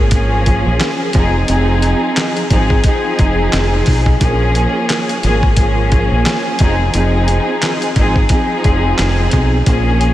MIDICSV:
0, 0, Header, 1, 4, 480
1, 0, Start_track
1, 0, Tempo, 681818
1, 1045, Time_signature, 4, 2, 24, 8
1, 7136, End_track
2, 0, Start_track
2, 0, Title_t, "String section"
2, 0, Program_c, 0, 48
2, 0, Note_on_c, 0, 61, 77
2, 0, Note_on_c, 0, 68, 99
2, 71, Note_off_c, 0, 61, 0
2, 74, Note_off_c, 0, 68, 0
2, 84, Note_on_c, 0, 53, 100
2, 90, Note_on_c, 0, 58, 82
2, 96, Note_on_c, 0, 61, 87
2, 102, Note_on_c, 0, 68, 98
2, 790, Note_off_c, 0, 53, 0
2, 798, Note_on_c, 0, 53, 97
2, 804, Note_on_c, 0, 60, 82
2, 807, Note_off_c, 0, 58, 0
2, 809, Note_off_c, 0, 68, 0
2, 810, Note_off_c, 0, 61, 0
2, 810, Note_on_c, 0, 63, 84
2, 817, Note_on_c, 0, 68, 105
2, 1025, Note_off_c, 0, 53, 0
2, 1028, Note_off_c, 0, 60, 0
2, 1031, Note_off_c, 0, 63, 0
2, 1033, Note_on_c, 0, 53, 100
2, 1035, Note_off_c, 0, 68, 0
2, 1039, Note_on_c, 0, 60, 82
2, 1045, Note_on_c, 0, 63, 96
2, 1052, Note_on_c, 0, 68, 102
2, 1710, Note_off_c, 0, 53, 0
2, 1713, Note_off_c, 0, 60, 0
2, 1716, Note_off_c, 0, 63, 0
2, 1719, Note_off_c, 0, 68, 0
2, 1758, Note_on_c, 0, 53, 94
2, 1765, Note_on_c, 0, 60, 84
2, 1771, Note_on_c, 0, 63, 91
2, 1777, Note_on_c, 0, 68, 103
2, 1985, Note_off_c, 0, 53, 0
2, 1988, Note_off_c, 0, 60, 0
2, 1991, Note_off_c, 0, 63, 0
2, 1995, Note_off_c, 0, 68, 0
2, 1995, Note_on_c, 0, 53, 101
2, 2002, Note_on_c, 0, 60, 88
2, 2008, Note_on_c, 0, 63, 85
2, 2014, Note_on_c, 0, 68, 109
2, 2895, Note_off_c, 0, 53, 0
2, 2898, Note_off_c, 0, 60, 0
2, 2901, Note_off_c, 0, 63, 0
2, 2904, Note_off_c, 0, 68, 0
2, 2952, Note_on_c, 0, 53, 92
2, 2959, Note_on_c, 0, 58, 83
2, 2965, Note_on_c, 0, 61, 92
2, 2971, Note_on_c, 0, 68, 106
2, 3629, Note_off_c, 0, 53, 0
2, 3633, Note_off_c, 0, 58, 0
2, 3636, Note_off_c, 0, 61, 0
2, 3639, Note_off_c, 0, 68, 0
2, 3679, Note_on_c, 0, 53, 94
2, 3685, Note_on_c, 0, 58, 90
2, 3691, Note_on_c, 0, 61, 80
2, 3698, Note_on_c, 0, 68, 102
2, 3905, Note_off_c, 0, 53, 0
2, 3908, Note_off_c, 0, 58, 0
2, 3912, Note_off_c, 0, 61, 0
2, 3915, Note_off_c, 0, 68, 0
2, 3924, Note_on_c, 0, 53, 96
2, 3931, Note_on_c, 0, 58, 78
2, 3937, Note_on_c, 0, 61, 87
2, 3944, Note_on_c, 0, 68, 99
2, 4629, Note_off_c, 0, 53, 0
2, 4637, Note_on_c, 0, 53, 99
2, 4643, Note_on_c, 0, 60, 83
2, 4648, Note_off_c, 0, 58, 0
2, 4648, Note_off_c, 0, 68, 0
2, 4650, Note_on_c, 0, 63, 85
2, 4651, Note_off_c, 0, 61, 0
2, 4656, Note_on_c, 0, 68, 101
2, 4865, Note_off_c, 0, 53, 0
2, 4868, Note_off_c, 0, 60, 0
2, 4871, Note_off_c, 0, 63, 0
2, 4873, Note_on_c, 0, 53, 94
2, 4874, Note_off_c, 0, 68, 0
2, 4879, Note_on_c, 0, 60, 83
2, 4885, Note_on_c, 0, 63, 91
2, 4891, Note_on_c, 0, 68, 101
2, 5550, Note_off_c, 0, 53, 0
2, 5553, Note_off_c, 0, 60, 0
2, 5556, Note_off_c, 0, 63, 0
2, 5559, Note_off_c, 0, 68, 0
2, 5598, Note_on_c, 0, 53, 96
2, 5605, Note_on_c, 0, 60, 87
2, 5612, Note_on_c, 0, 63, 88
2, 5618, Note_on_c, 0, 68, 103
2, 5825, Note_off_c, 0, 53, 0
2, 5828, Note_off_c, 0, 60, 0
2, 5832, Note_off_c, 0, 63, 0
2, 5835, Note_off_c, 0, 68, 0
2, 5835, Note_on_c, 0, 53, 100
2, 5841, Note_on_c, 0, 60, 89
2, 5847, Note_on_c, 0, 63, 86
2, 5853, Note_on_c, 0, 68, 106
2, 6735, Note_off_c, 0, 53, 0
2, 6738, Note_off_c, 0, 60, 0
2, 6741, Note_off_c, 0, 63, 0
2, 6744, Note_off_c, 0, 68, 0
2, 6794, Note_on_c, 0, 53, 91
2, 6800, Note_on_c, 0, 58, 83
2, 6806, Note_on_c, 0, 61, 91
2, 6813, Note_on_c, 0, 68, 105
2, 7136, Note_off_c, 0, 53, 0
2, 7136, Note_off_c, 0, 58, 0
2, 7136, Note_off_c, 0, 61, 0
2, 7136, Note_off_c, 0, 68, 0
2, 7136, End_track
3, 0, Start_track
3, 0, Title_t, "Fingered electric bass"
3, 0, Program_c, 1, 33
3, 0, Note_on_c, 1, 32, 85
3, 436, Note_off_c, 1, 32, 0
3, 468, Note_on_c, 1, 34, 87
3, 549, Note_off_c, 1, 34, 0
3, 811, Note_on_c, 1, 29, 103
3, 1004, Note_off_c, 1, 29, 0
3, 1049, Note_on_c, 1, 29, 104
3, 1356, Note_off_c, 1, 29, 0
3, 1766, Note_on_c, 1, 32, 87
3, 1961, Note_off_c, 1, 32, 0
3, 2250, Note_on_c, 1, 29, 89
3, 2444, Note_off_c, 1, 29, 0
3, 2488, Note_on_c, 1, 29, 92
3, 2682, Note_off_c, 1, 29, 0
3, 2730, Note_on_c, 1, 35, 92
3, 2924, Note_off_c, 1, 35, 0
3, 2966, Note_on_c, 1, 34, 103
3, 3274, Note_off_c, 1, 34, 0
3, 3688, Note_on_c, 1, 32, 83
3, 4276, Note_off_c, 1, 32, 0
3, 4305, Note_on_c, 1, 34, 85
3, 4388, Note_off_c, 1, 34, 0
3, 4650, Note_on_c, 1, 29, 102
3, 4844, Note_off_c, 1, 29, 0
3, 4888, Note_on_c, 1, 29, 102
3, 5195, Note_off_c, 1, 29, 0
3, 5606, Note_on_c, 1, 32, 87
3, 5802, Note_off_c, 1, 32, 0
3, 6089, Note_on_c, 1, 29, 95
3, 6283, Note_off_c, 1, 29, 0
3, 6329, Note_on_c, 1, 29, 91
3, 6523, Note_off_c, 1, 29, 0
3, 6571, Note_on_c, 1, 35, 95
3, 6764, Note_off_c, 1, 35, 0
3, 6808, Note_on_c, 1, 34, 108
3, 7115, Note_off_c, 1, 34, 0
3, 7136, End_track
4, 0, Start_track
4, 0, Title_t, "Drums"
4, 78, Note_on_c, 9, 42, 92
4, 82, Note_on_c, 9, 36, 97
4, 148, Note_off_c, 9, 42, 0
4, 152, Note_off_c, 9, 36, 0
4, 326, Note_on_c, 9, 42, 64
4, 328, Note_on_c, 9, 36, 95
4, 396, Note_off_c, 9, 42, 0
4, 398, Note_off_c, 9, 36, 0
4, 567, Note_on_c, 9, 39, 89
4, 568, Note_on_c, 9, 38, 110
4, 569, Note_on_c, 9, 42, 82
4, 637, Note_off_c, 9, 39, 0
4, 638, Note_off_c, 9, 38, 0
4, 640, Note_off_c, 9, 42, 0
4, 797, Note_on_c, 9, 42, 83
4, 808, Note_on_c, 9, 36, 93
4, 868, Note_off_c, 9, 42, 0
4, 879, Note_off_c, 9, 36, 0
4, 1043, Note_on_c, 9, 42, 89
4, 1113, Note_off_c, 9, 42, 0
4, 1284, Note_on_c, 9, 42, 67
4, 1354, Note_off_c, 9, 42, 0
4, 1525, Note_on_c, 9, 42, 99
4, 1528, Note_on_c, 9, 39, 94
4, 1529, Note_on_c, 9, 38, 118
4, 1595, Note_off_c, 9, 42, 0
4, 1598, Note_off_c, 9, 39, 0
4, 1600, Note_off_c, 9, 38, 0
4, 1665, Note_on_c, 9, 42, 50
4, 1736, Note_off_c, 9, 42, 0
4, 1763, Note_on_c, 9, 42, 75
4, 1764, Note_on_c, 9, 36, 87
4, 1834, Note_off_c, 9, 42, 0
4, 1835, Note_off_c, 9, 36, 0
4, 1902, Note_on_c, 9, 36, 92
4, 1972, Note_off_c, 9, 36, 0
4, 1997, Note_on_c, 9, 42, 88
4, 2001, Note_on_c, 9, 36, 98
4, 2067, Note_off_c, 9, 42, 0
4, 2071, Note_off_c, 9, 36, 0
4, 2244, Note_on_c, 9, 42, 64
4, 2247, Note_on_c, 9, 36, 96
4, 2314, Note_off_c, 9, 42, 0
4, 2317, Note_off_c, 9, 36, 0
4, 2486, Note_on_c, 9, 39, 88
4, 2487, Note_on_c, 9, 38, 112
4, 2489, Note_on_c, 9, 42, 83
4, 2556, Note_off_c, 9, 39, 0
4, 2558, Note_off_c, 9, 38, 0
4, 2559, Note_off_c, 9, 42, 0
4, 2717, Note_on_c, 9, 46, 58
4, 2728, Note_on_c, 9, 36, 95
4, 2787, Note_off_c, 9, 46, 0
4, 2798, Note_off_c, 9, 36, 0
4, 2860, Note_on_c, 9, 36, 94
4, 2930, Note_off_c, 9, 36, 0
4, 2963, Note_on_c, 9, 42, 91
4, 2964, Note_on_c, 9, 36, 110
4, 3033, Note_off_c, 9, 42, 0
4, 3035, Note_off_c, 9, 36, 0
4, 3204, Note_on_c, 9, 42, 66
4, 3274, Note_off_c, 9, 42, 0
4, 3445, Note_on_c, 9, 42, 94
4, 3448, Note_on_c, 9, 39, 94
4, 3450, Note_on_c, 9, 38, 116
4, 3516, Note_off_c, 9, 42, 0
4, 3519, Note_off_c, 9, 39, 0
4, 3520, Note_off_c, 9, 38, 0
4, 3586, Note_on_c, 9, 42, 52
4, 3657, Note_off_c, 9, 42, 0
4, 3685, Note_on_c, 9, 42, 72
4, 3755, Note_off_c, 9, 42, 0
4, 3822, Note_on_c, 9, 36, 94
4, 3893, Note_off_c, 9, 36, 0
4, 3918, Note_on_c, 9, 42, 87
4, 3921, Note_on_c, 9, 36, 100
4, 3988, Note_off_c, 9, 42, 0
4, 3992, Note_off_c, 9, 36, 0
4, 4165, Note_on_c, 9, 42, 64
4, 4168, Note_on_c, 9, 36, 98
4, 4236, Note_off_c, 9, 42, 0
4, 4238, Note_off_c, 9, 36, 0
4, 4407, Note_on_c, 9, 39, 87
4, 4408, Note_on_c, 9, 38, 110
4, 4410, Note_on_c, 9, 42, 83
4, 4478, Note_off_c, 9, 39, 0
4, 4479, Note_off_c, 9, 38, 0
4, 4481, Note_off_c, 9, 42, 0
4, 4638, Note_on_c, 9, 42, 83
4, 4648, Note_on_c, 9, 36, 98
4, 4708, Note_off_c, 9, 42, 0
4, 4719, Note_off_c, 9, 36, 0
4, 4883, Note_on_c, 9, 42, 90
4, 4954, Note_off_c, 9, 42, 0
4, 5124, Note_on_c, 9, 42, 66
4, 5194, Note_off_c, 9, 42, 0
4, 5365, Note_on_c, 9, 42, 97
4, 5368, Note_on_c, 9, 39, 90
4, 5370, Note_on_c, 9, 38, 117
4, 5435, Note_off_c, 9, 42, 0
4, 5439, Note_off_c, 9, 39, 0
4, 5440, Note_off_c, 9, 38, 0
4, 5505, Note_on_c, 9, 42, 51
4, 5575, Note_off_c, 9, 42, 0
4, 5603, Note_on_c, 9, 42, 73
4, 5604, Note_on_c, 9, 36, 90
4, 5674, Note_off_c, 9, 42, 0
4, 5675, Note_off_c, 9, 36, 0
4, 5742, Note_on_c, 9, 36, 95
4, 5813, Note_off_c, 9, 36, 0
4, 5837, Note_on_c, 9, 42, 87
4, 5841, Note_on_c, 9, 36, 99
4, 5907, Note_off_c, 9, 42, 0
4, 5912, Note_off_c, 9, 36, 0
4, 6084, Note_on_c, 9, 42, 64
4, 6087, Note_on_c, 9, 36, 93
4, 6155, Note_off_c, 9, 42, 0
4, 6158, Note_off_c, 9, 36, 0
4, 6326, Note_on_c, 9, 39, 86
4, 6328, Note_on_c, 9, 38, 105
4, 6329, Note_on_c, 9, 42, 86
4, 6397, Note_off_c, 9, 39, 0
4, 6398, Note_off_c, 9, 38, 0
4, 6400, Note_off_c, 9, 42, 0
4, 6557, Note_on_c, 9, 42, 84
4, 6568, Note_on_c, 9, 36, 92
4, 6628, Note_off_c, 9, 42, 0
4, 6639, Note_off_c, 9, 36, 0
4, 6804, Note_on_c, 9, 42, 87
4, 6805, Note_on_c, 9, 36, 113
4, 6874, Note_off_c, 9, 42, 0
4, 6876, Note_off_c, 9, 36, 0
4, 7045, Note_on_c, 9, 42, 68
4, 7116, Note_off_c, 9, 42, 0
4, 7136, End_track
0, 0, End_of_file